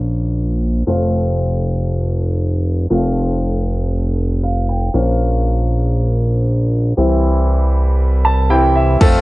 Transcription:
Already playing: A#1 F3 A#3 C#4 F4
0.87 F1 F3 A3 C4 F4
2.90 F1 F3 A3 C4 F4
4.43 F5
4.69 G5
4.94 A#1 F3 A#3 C#4 F4
6.97 C2 E3 G3 C4 E4
8.25 A5
8.50 E3 G3 C4 E4 G5
8.76 E5
9.01 F1 F3 A3 C4 F4 A4, kick, closed hi-hat, crash, shaker
9.14 shaker

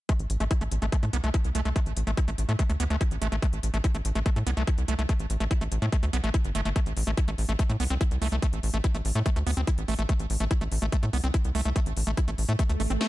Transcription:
0.09 A3, kick, closed hi-hat
0.19 A1, closed hi-hat
0.30 A1, closed hi-hat
0.40 A1 A3, closed hi-hat
0.51 E4, kick, closed hi-hat
0.61 A1 A3, closed hi-hat
0.72 A1, closed hi-hat
0.82 A1 A3, closed hi-hat
0.92 A3, kick, closed hi-hat
1.03 A2 A3, closed hi-hat
1.13 C2 B3, closed hi-hat
1.24 C2 A3, closed hi-hat
1.34 E4, kick, closed hi-hat
1.44 C2, closed hi-hat
1.55 C2 A3, closed hi-hat
1.65 C2 A3, closed hi-hat
1.76 A3, kick, closed hi-hat
1.86 A1, closed hi-hat
1.97 A1, closed hi-hat
2.07 A1 A3, closed hi-hat
2.17 E4, kick, closed hi-hat
2.28 A1 A3, closed hi-hat
2.38 A1, closed hi-hat
2.49 A2 A3, closed hi-hat
2.59 A3, kick, closed hi-hat
2.70 D2 A3, closed hi-hat
2.80 D2 B3, closed hi-hat
2.90 D2 A3, closed hi-hat
3.01 E4, kick, closed hi-hat
3.11 A1, closed hi-hat
3.22 A1 A3, closed hi-hat
3.32 A1 A3, closed hi-hat
3.42 A3, kick, closed hi-hat
3.53 A1, closed hi-hat
3.63 A1, closed hi-hat
3.74 A1 A3, closed hi-hat
3.84 E4, kick, closed hi-hat
3.95 A1 A3, closed hi-hat
4.05 A1, closed hi-hat
4.15 A1 A3, closed hi-hat
4.26 A3, kick, closed hi-hat
4.36 A2 A3, closed hi-hat
4.47 C2 B3, closed hi-hat
4.57 C2 A3, closed hi-hat
4.67 E4, kick, closed hi-hat
4.78 C2, closed hi-hat
4.88 C2 A3, closed hi-hat
4.99 C2 A3, closed hi-hat
5.09 A3, kick, closed hi-hat
5.20 A1, closed hi-hat
5.30 A1, closed hi-hat
5.40 A1 A3, closed hi-hat
5.51 E4, kick, closed hi-hat
5.61 A1 A3, closed hi-hat
5.72 A1, closed hi-hat
5.82 A2 A3, closed hi-hat
5.92 A3, kick, closed hi-hat
6.03 D2 A3, closed hi-hat
6.13 B1 B3, closed hi-hat
6.24 A1 A3, closed hi-hat
6.34 E4, kick, closed hi-hat
6.45 G1, closed hi-hat
6.55 G1 A3, closed hi-hat
6.65 G1 A3, closed hi-hat
6.76 A3, kick, closed hi-hat
6.86 A1, closed hi-hat
6.97 A1, open hi-hat
7.07 A1 A3, closed hi-hat
7.17 E4, kick, closed hi-hat
7.28 A1 A3, closed hi-hat
7.38 A1, open hi-hat
7.49 A1 A3, closed hi-hat
7.59 A3, kick, closed hi-hat
7.70 A2 A3, closed hi-hat
7.80 C2 B3, open hi-hat
7.90 C2 C4, closed hi-hat
8.01 E4, kick, closed hi-hat
8.11 C2, closed hi-hat
8.22 C2 A3, open hi-hat
8.32 C2 A3, closed hi-hat
8.42 A3, kick, closed hi-hat
8.53 A1, closed hi-hat
8.63 A1, open hi-hat
8.74 A1 A3, closed hi-hat
8.84 E4, kick, closed hi-hat
8.94 A1 A3, closed hi-hat
9.05 A1, open hi-hat
9.15 A2 A3, closed hi-hat
9.26 A3, kick, closed hi-hat
9.36 D2 A3, closed hi-hat
9.47 D2 B3, open hi-hat
9.57 D2 C4, closed hi-hat
9.67 E4, kick, closed hi-hat
9.78 A1, closed hi-hat
9.88 A1 A3, open hi-hat
9.99 A1 A3, closed hi-hat
10.09 A3, kick, closed hi-hat
10.20 A1, closed hi-hat
10.30 A1, open hi-hat
10.40 A1 A3, closed hi-hat
10.51 E4, kick, closed hi-hat
10.61 A1 A3, closed hi-hat
10.72 A1, open hi-hat
10.82 A1 A3, closed hi-hat
10.92 A3, kick, closed hi-hat
11.03 A2 A3, closed hi-hat
11.13 C2 B3, open hi-hat
11.24 C2 C4, closed hi-hat
11.34 E4, kick, closed hi-hat
11.45 C2, closed hi-hat
11.55 C2 A3, open hi-hat
11.65 C2 A3, closed hi-hat
11.76 A3, kick, closed hi-hat
11.86 A1, closed hi-hat
11.97 A1, open hi-hat
12.07 A1 A3, closed hi-hat
12.17 E4, kick, closed hi-hat
12.28 A1 A3, closed hi-hat
12.38 A1, open hi-hat
12.49 A2 A3, closed hi-hat
12.59 A3, kick, closed hi-hat, swell
12.70 D2 A3, closed hi-hat
12.80 A1 A3, open hi-hat
12.90 A1 C4, closed hi-hat
13.01 A3, snare

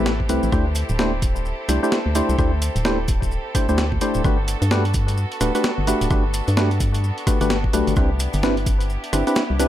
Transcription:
Already playing: A1 A3 C4 E4 G4 A4 B4
0.06 snare, maracas
0.20 kick
0.29 C2 A3 C4 E4 G4 B4, closed hi-hat, maracas
0.43 A1, maracas
0.52 D2 A3 D4 E4 G4 A4 C5, kick, cross-stick, maracas
0.75 closed hi-hat, maracas
0.89 D1, maracas
0.99 A3 D4 E4 G4 C5, snare, maracas
1.22 kick, closed hi-hat, maracas
1.36 maracas
1.45 maracas
1.69 C2 A3 D4 E4 G4 C5, cross-stick, closed hi-hat, maracas
1.83 A3 D4 E4 G4 C5, maracas
1.92 snare, maracas
2.06 D2
2.15 A3 D4 E4 G4 C5, closed hi-hat, maracas
2.29 C2, maracas
2.39 D2 A3 D4 E4 G4 C5, kick, cross-stick, maracas
2.62 closed hi-hat, maracas
2.76 D1, closed hi-hat, maracas
2.85 A3 D4 E4 G4 C5, snare, maracas
3.08 kick, closed hi-hat, maracas
3.22 kick, maracas
3.31 maracas
3.55 A3 D4 E4 G4 C5, kick, cross-stick, closed hi-hat, maracas
3.69 D2 A3 D4 E4 G4 C5, maracas
3.78 snare, maracas
3.92 D2, kick
4.01 A3 D4 E4 G4 C5, closed hi-hat, maracas
4.14 D1, maracas
4.24 G1 A3 B3 D4 F#4 G4 B4, kick, cross-stick, maracas
4.48 closed hi-hat, maracas
4.62 G2, closed hi-hat, maracas
4.71 A3 D4 F#4 G4 B4, snare, maracas
4.85 closed hi-hat
4.94 kick, closed hi-hat, maracas
5.08 closed hi-hat, maracas
5.17 maracas
5.32 closed hi-hat
5.41 D1 A3 D4 F#4 G4 B4, cross-stick, closed hi-hat, maracas
5.55 A3 D4 F#4 G4 B4, closed hi-hat, maracas
5.64 snare, maracas
5.78 G1
5.87 A3 D4 F#4 G4 B4, closed hi-hat, maracas
6.01 D1, closed hi-hat, maracas
6.10 G1 A3 D4 F#4 G4 B4, kick, cross-stick, maracas
6.34 closed hi-hat, maracas
6.48 G2, closed hi-hat, maracas
6.57 A3 D4 F#4 G4 B4, snare, maracas
6.71 closed hi-hat
6.80 kick, closed hi-hat, maracas
6.94 closed hi-hat, maracas
7.04 maracas
7.18 closed hi-hat
7.27 A3 D4 F#4 G4 B4, kick, cross-stick, closed hi-hat, maracas
7.41 G1 A3 D4 F#4 G4 B4, closed hi-hat, maracas
7.50 snare, maracas
7.64 kick
7.73 B1 A3 D4 F#4 G4 B4, closed hi-hat, maracas
7.87 G1, closed hi-hat, maracas
7.96 C2 C4 D4 E4 G4 B4, kick, cross-stick, maracas
8.20 closed hi-hat, maracas
8.33 G1, closed hi-hat, maracas
8.43 C4 D4 E4 G4 B4, snare, maracas
8.57 closed hi-hat
8.66 kick, closed hi-hat, maracas
8.80 closed hi-hat, maracas
8.90 maracas
9.04 closed hi-hat
9.13 G1 C4 D4 E4 G4 B4, cross-stick, closed hi-hat, maracas
9.27 C4 D4 E4 G4 B4, closed hi-hat, maracas
9.36 snare, maracas
9.50 C2
9.60 C4 D4 E4 G4 B4, closed hi-hat, maracas

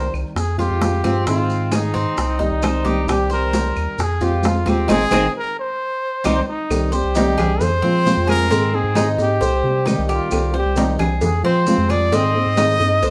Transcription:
Already playing: C3 D#3 G3 C4 G4 C5
0.14 C2, claves, maracas
0.36 F2 G#4, muted nylon-string guitar stroke, high bongo, high conga, maracas
0.58 F2 F3 G#3 C4 F4 G4, high bongo, high conga, maracas
0.71 F2
0.81 F3 G#3 C4 F4, high bongo, low bongo, high conga, maracas
1.04 G2 F3 G#3 C4 F4, high bongo, high conga, claves, maracas
1.27 G#2 D#3 G#3 C4 D#4 F4 G#4, high bongo, high conga, maracas
1.50 high bongo, high conga, maracas
1.72 D#4 G#4, high bongo, high conga, claves, maracas
1.94 G#2 C4, high bongo, high conga, maracas
2.17 C2, muted nylon-string guitar stroke, high bongo, high conga, maracas
2.39 C2 D#3 G3 C4 D#4 G4, high bongo, high conga, maracas
2.52 C2
2.62 D#3 G3 C4 G4 C5, high bongo, low bongo, high conga, claves, maracas
2.85 C2 D#3 G3 C4 G4, high conga, maracas
3.08 C2 C3 D#3 G3 C4 G4, high bongo, high conga, claves, maracas
3.30 A#4 C5, high bongo, high conga, maracas
3.53 high bongo, high conga, maracas
3.76 D#2, claves, maracas
3.98 F2 G#4, muted nylon-string guitar stroke, high bongo, high conga, maracas
4.21 F2 F3 G#3 C4 F4 G4, high bongo, high conga, maracas
4.33 F2
4.43 F3 G#3 C4 F4, high bongo, low bongo, high conga, maracas
4.66 D#2 F3 G#3 C4 F4 G4, high bongo, high conga, claves, maracas
4.88 G#1 D#3 G#3 C4 D#4 G#4, high bongo, high conga, claves, maracas
5.11 G#1 D#3 G#3 C4 D#4 G#4, high bongo, high conga, claves, maracas
5.37 A#4
5.60 C5
6.24 C2 D#3 G3 C4 D#4 G4, high bongo, high conga, claves, maracas
6.48 D#4
6.70 C2 C3 D#3 G3 C4 G4, cowbell, high conga, claves, maracas
6.92 G3 C4 G4 C5, high conga, maracas
7.05 C2
7.15 C3 D#3 G3 C4 D#4 G4, cowbell, high conga, maracas
7.38 C2 G3 C4 G#4, cowbell, high conga, low conga, claves, maracas
7.61 F2 C5, muted nylon-string guitar stroke, cowbell, high conga, low conga, maracas
7.82 F3 G#3 C4 F4, high conga
8.06 C3 F3 G#3 C4 F4, cowbell, high conga, maracas
8.17 F2
8.28 G#4 A#4, cowbell, high conga, claves, maracas
8.50 G#2 D#3 G#3 C4 D#4 G#4, cowbell, maracas
8.73 C4 D#4 G#4, high conga
8.84 G#2
8.95 D#3 G#3 C4 D#4 G#4, cowbell, high conga, claves, maracas
9.18 G#2 C4 D#4 G4 G#4, cowbell, maracas
9.41 C2 C5, muted nylon-string guitar stroke, cowbell, high conga, maracas
9.64 C3 G3 C4 G4, high conga
9.86 C3 D#3 G3 C4 D#4 G4, cowbell, high conga, claves, maracas
9.99 C2
10.09 F4 G4, cowbell, maracas
10.31 C2 C3 D#3 G3 C4 G4, cowbell, high conga, claves, maracas
10.54 G3 C4 G4 C5, high conga
10.58 G4
10.66 C2
10.76 C3 D#3 G3 C4 D#4 G4, cowbell, high conga, maracas
10.98 C2 G3 C4 G4 G#4, cowbell, high conga, low conga, claves, maracas
11.21 F2 G#4, muted nylon-string guitar stroke, cowbell, high conga, low conga, maracas
11.43 F3 G#3 C4 F4 C5, high conga
11.66 C3 F3 G#3 C4 F4, cowbell, high conga, maracas
11.78 F2
11.89 G#4 D5, cowbell, high conga, claves, maracas
12.12 G#2 D#3 G#3 C4 D#4 G#4 D#5, cowbell, high conga, maracas
12.35 C4 D#4 G#4, high conga
12.46 G#2
12.56 D#3 G#3 C4 D#4 G#4, cowbell, high conga, claves, maracas
12.80 G2 C4 D#4 G#4, cowbell, maracas
13.03 C2 C5, muted nylon-string guitar stroke, cowbell, high conga, maracas

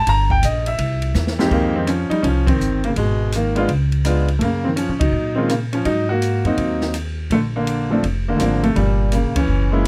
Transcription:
0.07 G1 A#5, kick, ride
0.30 G5, kick
0.43 A#1 D#5, kick, hi-hat pedal, ride
0.66 E5, ride
0.78 C2, kick, ride
1.02 ride
1.14 E2, snare, hi-hat pedal
1.27 snare
1.39 F2 G#3 C4 D#4 G4, snare
1.51 F2 D#3 A#3, kick, crash
1.75 D#3 C4
1.87 F3 C#4, hi-hat pedal, ride
2.10 G3 D#4, muted upright bass stroke, ride
2.23 C2 F3 C#4, kick, ride
2.46 D#3 C4, kick, ride
2.59 G1, hi-hat pedal
2.84 C#3 A#3, ride
2.96 G#1 B2 G#3, kick, ride
3.32 D#3 A#3, hi-hat pedal, ride
3.55 G#3 B3 D4 F4, ride
3.68 C#2, kick, ride
3.92 ride
4.04 G#3 B3 D4 F4, cross-stick, hi-hat pedal, ride
4.28 ride
4.39 F#2 A3 A#3, kick, ride
4.44 C#3
4.64 D#3 C4
4.76 F3 C#4, hi-hat pedal, ride
4.89 A#2 C#4
4.99 C#3 F#3 D#4, kick, ride
5.13 A#2
5.35 D#3 G#3 A#3 C4 C#4 F4
5.49 C#3 A#3, cross-stick, hi-hat pedal, ride
5.73 F3 C#4, ride
5.85 G#2 F#3 D#4, kick, ride
6.09 A#3 F#4
6.22 hi-hat pedal, ride
6.44 F#2 F#3 A#3 C4 D#4, ride
6.57 D#2, kick, ride
6.81 snare
6.94 cross-stick, hi-hat pedal, ride
7.30 A#1 D3 A3, kick, ride
7.56 D3 A#3
7.67 hi-hat pedal, ride
7.90 F3 A3 C4 D4
8.03 F1, kick, ride
8.28 D3 A#3
8.37 G#1 F3 A3 A#3 C4 D4, cross-stick, hi-hat pedal, ride
8.42 D3
8.63 C3 A3, ride
8.76 G1 A#2 G3, kick, ride
9.12 C#3 A#3, hi-hat pedal, ride
9.23 A#1
9.35 F1 E3 C#4, kick, ride
9.47 F#1
9.71 G#3 A#3 C#4 E4

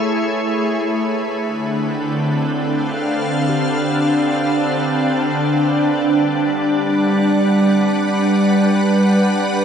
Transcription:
Already playing: A3 E4 G#4 B4 C#5 B5
1.29 D3
1.55 C4 D4
2.54 F5
3.49 G4
6.02 G3
6.80 F#5
7.25 B4

